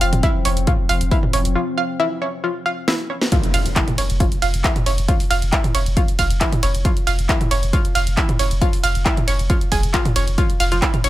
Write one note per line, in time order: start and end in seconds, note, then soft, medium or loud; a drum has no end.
0.00 0.12 F1 loud
0.00 1.56 F3 medium
0.00 1.56 C4 medium
0.00 0.04 F5 loud
0.00 open hi-hat loud
0.13 0.23 F1 medium
0.13 closed hi-hat medium
0.13 mid tom medium
0.23 0.28 E4 loud
0.23 kick loud
0.23 closed hi-hat medium
0.45 0.56 F1 loud
0.45 0.50 C#5 medium
0.45 open hi-hat loud
0.57 0.67 F1 medium
0.57 closed hi-hat medium
0.67 0.72 F4 medium
0.67 kick loud
0.67 closed hi-hat medium
0.67 mid tom medium
0.89 1.00 F1 loud
0.89 0.92 F5 loud
0.89 open hi-hat medium
1.01 1.11 F1 medium
1.01 closed hi-hat medium
1.11 1.17 E4 loud
1.11 kick loud
1.11 open hi-hat medium
1.23 mid tom medium
1.33 1.44 F1 medium
1.33 1.39 C#5 medium
1.33 open hi-hat loud
1.45 1.55 F1 medium
1.45 closed hi-hat medium
1.55 1.61 F4 medium
1.78 1.81 F5 loud
2.00 2.05 E4 loud
2.22 2.27 C#5 medium
2.44 2.49 F4 medium
2.66 2.69 F5 loud
2.88 2.93 E4 loud
2.88 snare loud
3.10 3.15 C#5 medium
3.21 snare medium
3.32 3.37 F4 medium
3.32 kick loud
3.32 closed hi-hat medium
3.32 ride medium
3.32 impact medium
3.44 closed hi-hat medium
3.54 3.65 F1 loud
3.54 3.57 F5 loud
3.54 open hi-hat loud
3.54 ride medium
3.66 3.76 F1 medium
3.66 closed hi-hat medium
3.76 3.81 E4 loud
3.76 kick loud
3.76 clap loud
3.76 closed hi-hat medium
3.76 ride medium
3.88 closed hi-hat medium
3.88 mid tom medium
3.98 4.09 F1 loud
3.98 4.03 C#5 medium
3.98 open hi-hat loud
3.98 ride medium
4.10 4.20 F1 medium
4.10 closed hi-hat medium
4.20 4.25 F4 medium
4.20 kick loud
4.20 closed hi-hat medium
4.20 ride medium
4.32 closed hi-hat medium
4.42 4.53 F1 loud
4.42 4.45 F5 loud
4.42 open hi-hat loud
4.42 ride medium
4.54 4.64 F1 medium
4.54 closed hi-hat medium
4.64 4.69 E4 loud
4.64 kick loud
4.64 clap loud
4.64 open hi-hat medium
4.64 ride medium
4.76 closed hi-hat medium
4.76 mid tom medium
4.86 4.97 F1 loud
4.86 4.92 C#5 medium
4.86 open hi-hat loud
4.86 ride medium
4.98 5.08 F1 medium
4.98 closed hi-hat medium
5.08 5.14 F4 medium
5.08 kick loud
5.08 closed hi-hat medium
5.08 ride medium
5.20 open hi-hat medium
5.30 5.41 F1 loud
5.30 5.34 F5 loud
5.30 open hi-hat loud
5.30 ride medium
5.42 5.52 F1 medium
5.42 closed hi-hat medium
5.53 5.58 E4 loud
5.53 kick loud
5.53 clap loud
5.53 closed hi-hat medium
5.53 ride medium
5.64 closed hi-hat medium
5.64 mid tom medium
5.75 5.86 F1 loud
5.75 5.80 C#5 medium
5.75 open hi-hat loud
5.75 ride medium
5.86 5.97 F1 medium
5.86 closed hi-hat medium
5.97 6.02 F4 medium
5.97 kick loud
5.97 closed hi-hat medium
5.97 ride medium
6.08 closed hi-hat medium
6.19 6.30 F1 loud
6.19 6.22 F5 loud
6.19 kick medium
6.19 open hi-hat loud
6.19 ride medium
6.30 6.41 F1 medium
6.30 closed hi-hat medium
6.41 6.46 E4 loud
6.41 kick loud
6.41 clap loud
6.41 closed hi-hat medium
6.41 ride medium
6.52 closed hi-hat medium
6.52 mid tom medium
6.63 6.74 F1 loud
6.63 6.68 C#5 medium
6.63 open hi-hat loud
6.63 ride medium
6.74 6.85 F1 medium
6.74 closed hi-hat medium
6.85 6.90 F4 medium
6.85 kick loud
6.85 closed hi-hat medium
6.85 ride medium
6.97 closed hi-hat medium
7.07 7.18 F1 loud
7.07 7.10 F5 loud
7.07 open hi-hat loud
7.07 ride medium
7.19 7.29 F1 medium
7.19 closed hi-hat medium
7.29 7.34 E4 loud
7.29 kick loud
7.29 clap loud
7.29 closed hi-hat medium
7.29 ride medium
7.41 closed hi-hat medium
7.41 mid tom loud
7.51 7.62 F1 loud
7.51 7.56 C#5 medium
7.51 open hi-hat loud
7.51 ride medium
7.63 7.73 F1 medium
7.63 closed hi-hat medium
7.73 7.78 F4 medium
7.73 kick loud
7.73 closed hi-hat medium
7.73 ride medium
7.85 closed hi-hat medium
7.95 8.06 F1 loud
7.95 7.98 F5 loud
7.95 open hi-hat loud
7.95 ride medium
8.07 8.17 F1 medium
8.07 closed hi-hat medium
8.17 8.22 E4 loud
8.17 kick loud
8.17 clap loud
8.17 open hi-hat medium
8.17 ride medium
8.29 closed hi-hat medium
8.29 mid tom loud
8.39 8.50 F1 medium
8.39 8.45 C#5 medium
8.39 open hi-hat loud
8.39 ride medium
8.51 8.61 F1 medium
8.51 closed hi-hat medium
8.61 8.67 F4 medium
8.61 kick loud
8.61 closed hi-hat medium
8.61 ride medium
8.73 open hi-hat medium
8.83 8.95 F1 loud
8.83 8.87 F5 loud
8.83 open hi-hat loud
8.83 ride medium
8.95 9.05 F1 medium
8.95 closed hi-hat soft
9.05 9.11 E4 loud
9.05 kick loud
9.05 clap loud
9.05 closed hi-hat medium
9.05 ride medium
9.17 closed hi-hat medium
9.17 mid tom loud
9.28 9.39 F1 loud
9.28 9.33 C#5 medium
9.28 open hi-hat loud
9.28 ride medium
9.39 9.49 F1 medium
9.39 closed hi-hat medium
9.50 9.55 F4 medium
9.50 kick loud
9.50 closed hi-hat medium
9.50 ride medium
9.61 closed hi-hat medium
9.72 9.83 F1 loud
9.72 9.79 G#4 medium
9.72 kick medium
9.72 open hi-hat loud
9.72 ride medium
9.83 9.94 F1 medium
9.83 closed hi-hat medium
9.94 10.02 F4 medium
9.94 kick loud
9.94 clap loud
9.94 closed hi-hat medium
9.94 ride medium
10.05 closed hi-hat medium
10.05 mid tom loud
10.16 10.27 F1 loud
10.16 10.24 C#5 medium
10.16 open hi-hat loud
10.16 ride medium
10.27 10.38 F1 medium
10.27 closed hi-hat medium
10.38 10.43 F4 medium
10.38 kick loud
10.38 closed hi-hat medium
10.38 ride medium
10.50 closed hi-hat medium
10.60 10.71 F1 loud
10.60 10.63 F5 loud
10.60 open hi-hat loud
10.60 ride medium
10.72 10.82 F1 medium
10.72 10.74 F4 medium
10.72 closed hi-hat soft
10.82 10.87 E4 loud
10.82 kick loud
10.82 clap loud
10.82 closed hi-hat medium
10.82 ride medium
10.94 closed hi-hat medium
10.94 mid tom loud
11.04 11.09 F1 loud
11.04 11.09 C#5 medium
11.04 open hi-hat loud
11.04 ride medium